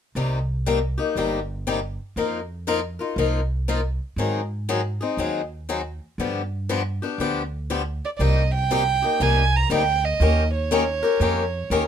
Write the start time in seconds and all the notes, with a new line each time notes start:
0.15 C2 C3 G3 A#3 D#4 G4
0.66 C3 G3 A#3 D#4 G4
0.98 A#3 D#4 G4
1.15 G1 C3 G3 A#3 D#4 G4
1.67 C3 G3 A#3 D#4 G4
2.16 F2 F3 A#3 D#4 F4 A#4
2.67 F3 A#3 D#4 F4 A#4
2.99 D#4 F4 A#4
3.16 C2 F3 A#3 D#4 F4 A#4
3.68 F3 A#3 D#4 F4 A#4
4.16 G#2 D#3 F#3 C4 D#4 G#4
4.69 D#3 F#3 C4 D#4 G#4
5.01 C4 D#4 G#4
5.17 D#2 D#3 F#3 C4 D#4 G#4
5.69 D#3 F#3 C4 D#4 G#4
6.18 G2 D3 F3 B3 D4 G4
6.69 D3 F3 B3 D4 G4
7.02 B3 D4 G4
7.18 D2 D3 F3 B3 D4 G4
7.70 D3 F3 B3 D4 G4
8.05 D5
8.17 C2 C3 G3 A#3 D5
8.21 D#4 G4 D#5
8.54 G5
8.71 C3 G3 A#3 D#4 G4
9.02 A#3 D#4 G4
9.20 C2 C3 G3 A#3 D#4 G4 G#5
9.56 A#5
9.70 D2 C3 G3 A#3 D#4 G4
9.74 G5
10.05 D#5
10.20 D#2 D#3 A#3 C#4 G4 A#4
10.55 C#5
10.71 D#3 A#3 C#4 G4 A#4
11.03 C#4 G4 A#4
11.20 F2 D#3 A#3 C#4 G4 A#4
11.70 D#2 D#3 A#3 C#4 G4 A#4